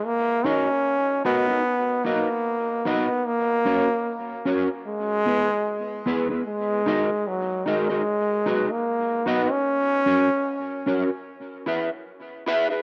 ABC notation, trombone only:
X:1
M:4/4
L:1/16
Q:"Swing 16ths" 1/4=75
K:Ebphr
V:1 name="Trombone"
B,2 D4 C4 B,4 =B,2 | B,6 z2 ^G,6 z2 | A,4 G,2 A,4- A, B,3 =B, D- | D6- D z8 z |]